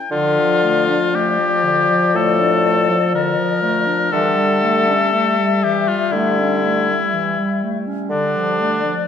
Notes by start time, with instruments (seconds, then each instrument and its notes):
0.11 bassoon D3, clarinet D3, french horn F3, oboe F4, flute D5
0.39 clarinet F3
0.64 clarinet A3
0.89 clarinet D4
1.15 clarinet A3, oboe G4
1.39 clarinet F3
1.64 clarinet D3
1.89 clarinet F3
2.14 bassoon A2, clarinet A3, oboe A4
2.40 clarinet D4
2.64 clarinet A3
2.89 clarinet F3
3.14 clarinet D3, oboe A#4
3.38 clarinet F3
3.62 clarinet A3
3.87 clarinet D4
4.12 bassoon D3, clarinet E3, french horn G3, oboe A4, flute E5
4.37 clarinet G3
4.63 clarinet A3
4.88 clarinet C#4
5.13 clarinet A3
5.38 clarinet G3
5.64 clarinet E3, oboe G4
5.88 clarinet G3, oboe F4
6.12 bassoon D3, clarinet A3, oboe E4
6.40 clarinet C#4
6.65 clarinet A3
6.90 clarinet G3
7.14 clarinet E3
7.39 clarinet G3
7.63 clarinet A3
7.87 clarinet C#4
8.09 bassoon D3, clarinet D3, oboe D4, flute D5
8.37 clarinet F3
8.60 clarinet A3
8.84 clarinet F3